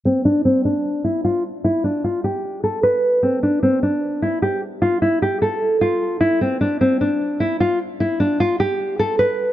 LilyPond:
\new Staff \with { instrumentName = "Nylon-string guitar" } { \time 4/4 \key d \dorian \tempo 4 = 151 c'8 d'8 c'8 d'4 e'8 f'8 r8 | e'8 d'8 f'8 g'4 a'8 b'4 | c'8 d'8 c'8 d'4 e'8 g'8 r8 | f'8 e'8 g'8 a'4 f'4 e'8 |
c'8 d'8 c'8 d'4 e'8 f'8 r8 | e'8 d'8 f'8 g'4 a'8 b'4 | }